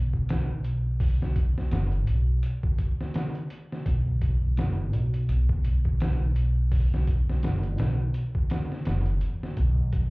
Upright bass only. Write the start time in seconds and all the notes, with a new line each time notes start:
Already playing: B1
0.50 B1
1.72 F#1
2.08 B1
3.86 B1
4.58 F#1
4.93 B1
5.29 B1
6.21 B1
7.43 F#1
7.79 B1
8.86 F#1
9.22 E2
9.58 B1